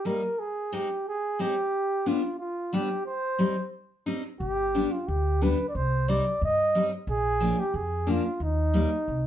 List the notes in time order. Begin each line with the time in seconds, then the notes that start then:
0.05 G3 A#3 D#4 A#4
0.39 G#4
0.72 G#3 C4 D#4 G4
1.08 G#4
1.39 G#3 C4 D#4 G4
2.06 G3 B3 D4 F4
2.39 F4
2.73 G3 B3 D4 G4
3.06 C5
3.39 G3 C4 D#4
4.06 G3 C4 D#4
4.40 G1 G4
4.74 G3 B3 D4
4.91 F4
5.08 D2 G4
5.41 G3 B3 D4 B4
5.69 D5
5.75 C2 C5
6.08 G3 C4 D#4 D5
6.42 G2 D#5
6.75 G3 C4 D#4
7.07 A#1 G#4
7.40 F3 A#3 D4
7.60 G4
7.74 F2 G#4
8.07 F3 A#3 D4 F4
8.40 D#2 D#4
8.74 G3 A#3 D#4
9.08 C2